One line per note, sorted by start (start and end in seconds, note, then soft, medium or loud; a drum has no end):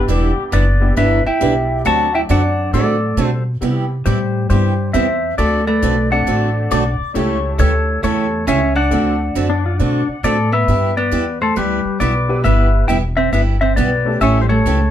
0.00 0.49 G3 medium
0.00 0.49 B3 medium
0.00 0.49 D4 medium
0.00 0.49 E4 medium
0.00 0.49 G4 medium
0.08 0.34 E1 medium
0.08 0.30 E3 medium
0.08 0.30 G3 medium
0.08 0.30 D4 medium
0.08 0.31 E4 medium
0.08 0.43 G4 medium
0.08 0.31 B4 medium
0.37 muted upright bass stroke soft
0.52 0.95 F#1 medium
0.52 0.64 E3 medium
0.52 0.64 G3 medium
0.52 0.93 B3 medium
0.52 0.64 D4 medium
0.52 0.64 E4 medium
0.52 0.94 B4 medium
0.52 0.64 B4 medium
0.52 0.94 D5 medium
0.80 0.95 G3 medium
0.80 0.95 B3 medium
0.80 0.95 D4 medium
0.80 0.95 E4 medium
0.80 0.95 G4 medium
0.97 1.23 G1 medium
0.97 1.18 E3 medium
0.97 1.19 G3 medium
0.97 1.23 B3 medium
0.97 1.19 D4 medium
0.97 1.19 E4 medium
0.97 1.24 B4 medium
0.97 1.19 B4 medium
0.97 1.24 E5 loud
1.26 1.81 E4 medium
1.26 1.81 E5 medium
1.26 1.82 G5 loud
1.26 muted upright bass stroke soft
1.40 1.84 B1 medium
1.40 1.52 E3 medium
1.40 1.84 G3 medium
1.40 1.52 G3 medium
1.40 1.84 B3 medium
1.40 1.84 D4 medium
1.40 1.52 D4 medium
1.40 1.85 E4 medium
1.40 1.53 E4 medium
1.40 1.85 G4 medium
1.40 1.53 B4 medium
1.84 2.28 D2 medium
1.84 2.07 D3 medium
1.84 3.08 F#3 medium
1.84 3.08 A3 medium
1.84 2.07 A3 medium
1.84 3.08 C4 medium
1.84 2.07 C4 medium
1.84 3.08 D4 medium
1.84 2.07 F#4 medium
1.84 3.09 F#4 medium
1.84 2.12 F#4 medium
1.84 2.07 A4 medium
1.84 2.12 F#5 medium
1.84 2.13 A5 loud
2.15 2.20 E4 medium
2.15 2.20 E5 medium
2.15 2.20 G5 medium
2.29 2.72 F#2 medium
2.29 2.41 D3 medium
2.29 2.41 A3 medium
2.29 2.41 C4 medium
2.29 2.71 D4 medium
2.29 2.41 F#4 medium
2.29 2.41 A4 medium
2.29 2.71 D5 medium
2.29 2.76 F#5 loud
2.73 3.16 A2 medium
2.73 2.95 D3 medium
2.73 2.95 A3 medium
2.73 3.26 A3 medium
2.73 2.96 C4 medium
2.73 2.96 F#4 medium
2.73 3.42 A4 medium
2.73 2.96 A4 medium
2.73 3.26 D5 medium
3.17 3.60 B2 medium
3.17 3.29 D3 medium
3.17 3.29 A3 medium
3.17 3.29 C4 medium
3.17 3.29 F#4 medium
3.17 3.29 A4 medium
3.26 3.43 G3 medium
3.26 3.42 C5 medium
3.61 4.04 C3 medium
3.61 3.84 C3 medium
3.61 3.87 G3 medium
3.61 3.84 G3 medium
3.61 3.87 B3 medium
3.61 3.84 B3 medium
3.61 3.87 C4 medium
3.61 3.87 E4 medium
3.61 3.84 E4 medium
3.61 3.88 G4 medium
3.61 3.84 G4 medium
4.06 4.49 A2 medium
4.06 4.17 C3 medium
4.06 4.47 G3 medium
4.06 4.17 G3 medium
4.06 4.18 B3 medium
4.06 4.18 E4 medium
4.06 4.47 G4 medium
4.06 4.18 G4 medium
4.06 4.49 C5 medium
4.50 4.93 G2 medium
4.50 4.72 C3 medium
4.50 4.91 G3 medium
4.50 4.72 G3 medium
4.50 4.72 B3 medium
4.50 4.72 E4 medium
4.50 4.91 G4 medium
4.50 4.72 G4 medium
4.50 4.93 C5 medium
4.93 5.37 E2 medium
4.93 5.06 C3 medium
4.93 5.06 G3 medium
4.93 5.06 B3 medium
4.93 5.35 C4 medium
4.93 5.06 E4 medium
4.93 5.06 G4 medium
4.93 5.35 C5 medium
4.93 5.38 E5 loud
5.38 5.81 D2 medium
5.38 5.60 D3 medium
5.38 5.60 A3 medium
5.38 5.65 A3 medium
5.38 5.60 C4 medium
5.38 5.61 F#4 medium
5.38 5.65 A4 medium
5.38 5.61 A4 medium
5.38 5.66 D5 loud
5.67 6.08 A3 medium
5.67 6.09 B4 medium
5.67 6.11 D5 loud
5.82 6.25 B1 loud
5.82 5.94 D3 medium
5.82 5.94 A3 medium
5.82 5.94 C4 medium
5.82 5.94 F#4 medium
5.82 5.95 A4 medium
6.10 6.67 A3 medium
6.10 6.68 C4 medium
6.10 6.68 D4 medium
6.10 6.96 D4 medium
6.10 6.68 F#4 medium
6.10 6.68 A4 medium
6.10 6.96 D5 medium
6.10 6.96 F#5 loud
6.27 6.69 A1 medium
6.27 6.48 D3 medium
6.27 6.49 A3 medium
6.27 6.49 C4 medium
6.27 6.49 F#4 medium
6.27 6.49 A4 medium
6.71 6.98 B1 loud
6.71 6.82 D3 medium
6.71 6.83 A3 medium
6.71 6.83 C4 medium
6.71 6.83 F#4 medium
6.71 6.83 A4 medium
6.71 6.85 D5 loud
6.86 7.14 D5 loud
7.00 muted upright bass stroke soft
7.14 7.58 C#2 medium
7.14 7.37 C#3 medium
7.14 7.37 E3 medium
7.14 8.38 A3 medium
7.14 7.37 A3 medium
7.14 8.38 C#4 medium
7.14 7.37 C#4 medium
7.14 8.38 E4 medium
7.14 8.38 G4 medium
7.14 7.37 G4 medium
7.14 8.39 A4 medium
7.14 7.50 C#5 loud
7.58 8.02 D2 medium
7.58 7.70 C#3 medium
7.58 7.71 E3 medium
7.58 8.00 A3 medium
7.58 7.71 A3 medium
7.58 7.71 C#4 medium
7.58 7.71 G4 medium
7.58 8.01 A4 medium
7.58 8.03 C#5 medium
8.03 8.46 E2 medium
8.03 8.25 C#3 medium
8.03 8.25 E3 medium
8.03 8.44 A3 medium
8.03 8.25 A3 medium
8.03 8.26 C#4 medium
8.03 8.26 G4 medium
8.03 8.45 A4 medium
8.03 8.48 C#5 medium
8.47 8.90 C#2 loud
8.47 8.59 C#3 medium
8.47 8.59 E3 medium
8.47 8.59 A3 medium
8.47 8.74 C#4 medium
8.47 8.59 C#4 medium
8.47 8.60 G4 medium
8.47 8.75 C#5 medium
8.47 8.74 E5 loud
8.76 10.48 D4 medium
8.76 10.23 D5 medium
8.76 10.49 F#5 loud
8.91 9.34 D2 medium
8.91 9.13 D3 medium
8.91 9.17 A3 medium
8.91 9.13 A3 medium
8.91 9.17 C4 medium
8.91 9.14 C4 medium
8.91 9.17 D4 medium
8.91 9.17 F#4 medium
8.91 9.14 F#4 medium
8.91 9.18 A4 medium
8.91 9.14 A4 medium
9.35 9.78 F#2 medium
9.35 9.47 D3 medium
9.35 9.47 A3 medium
9.35 9.47 C4 medium
9.35 9.47 F#4 medium
9.35 9.48 A4 medium
9.50 9.64 D4 medium
9.66 9.79 F4 medium
9.79 10.06 B2 medium
9.79 10.01 D3 medium
9.79 10.02 A3 medium
9.79 10.02 C4 medium
9.79 10.07 D4 loud
9.79 10.02 F#4 medium
9.79 10.02 A4 medium
10.08 muted upright bass stroke soft
10.23 10.66 A2 medium
10.23 10.35 D3 medium
10.23 10.36 A3 medium
10.23 10.51 A3 medium
10.23 10.36 C4 medium
10.23 10.36 F#4 medium
10.23 10.51 A4 medium
10.23 10.36 A4 medium
10.23 10.54 D5 loud
10.52 10.93 B3 medium
10.52 10.94 B4 medium
10.52 10.94 E5 loud
10.68 11.11 G2 medium
10.68 10.90 G3 medium
10.68 10.90 B3 medium
10.68 10.90 E4 medium
10.68 10.91 G4 medium
10.97 11.38 B3 medium
10.97 11.39 B4 medium
10.97 11.38 D5 medium
11.12 11.55 E2 medium
11.12 11.23 G3 medium
11.12 11.24 B3 medium
11.12 11.24 E4 medium
11.12 11.24 G4 medium
11.41 11.56 A3 medium
11.41 11.56 A4 medium
11.41 11.57 C5 loud
11.56 11.83 D2 medium
11.56 11.78 G3 medium
11.56 11.98 G3 medium
11.56 11.78 B3 medium
11.56 11.78 E4 medium
11.56 11.79 G4 medium
11.56 11.98 G4 medium
11.56 11.98 B4 loud
11.85 muted upright bass stroke soft
12.00 12.43 B1 medium
12.00 12.12 G3 medium
12.00 12.41 B3 medium
12.00 12.12 B3 medium
12.00 12.12 E4 medium
12.00 12.13 G4 medium
12.00 12.42 B4 medium
12.00 12.44 D5 loud
12.28 12.85 G3 medium
12.28 12.85 B3 medium
12.28 12.86 E4 medium
12.28 12.86 G4 medium
12.28 12.86 B4 medium
12.44 12.88 G1 medium
12.44 12.67 G3 medium
12.44 12.85 B3 medium
12.44 12.67 B3 medium
12.44 12.67 E4 medium
12.44 12.67 G4 medium
12.44 12.86 B4 medium
12.44 12.88 E5 loud
12.88 13.32 E1 medium
12.88 13.00 G3 medium
12.88 13.01 B3 medium
12.88 12.96 E4 medium
12.88 13.01 E4 medium
12.88 13.01 G4 medium
12.88 12.97 E5 medium
12.88 12.96 G5 loud
13.17 13.32 C4 medium
13.17 13.32 C5 medium
13.17 13.32 E5 loud
13.32 13.76 G1 medium
13.32 13.55 G3 medium
13.32 13.40 B3 medium
13.32 13.55 B3 medium
13.32 13.55 E4 medium
13.32 13.56 G4 medium
13.32 13.42 B4 medium
13.32 13.41 E5 loud
13.61 13.76 C4 medium
13.61 13.77 C5 medium
13.61 13.76 E5 medium
13.76 14.20 B1 medium
13.76 13.89 G3 medium
13.76 14.18 B3 medium
13.76 13.89 B3 medium
13.76 13.89 E4 medium
13.76 13.90 G4 medium
13.76 14.19 B4 medium
13.76 14.18 D5 loud
14.05 14.62 A3 medium
14.05 14.63 C#4 medium
14.05 14.63 E4 medium
14.05 14.63 G4 medium
14.05 14.63 A4 medium
14.21 14.64 A1 medium
14.21 14.43 C#3 medium
14.21 14.43 E3 medium
14.21 14.43 A3 medium
14.21 14.40 C#4 medium
14.21 14.44 C#4 medium
14.21 14.44 G4 medium
14.21 14.41 C#5 medium
14.21 14.40 E5 loud
14.41 14.50 G3 medium
14.41 14.49 C5 medium
14.49 14.91 A3 medium
14.49 14.91 A4 medium
14.49 14.91 C#5 medium
14.65 14.91 C#2 medium
14.65 14.77 C#3 medium
14.65 14.78 E3 medium
14.65 14.78 A3 medium
14.65 14.78 C#4 medium
14.65 14.78 G4 medium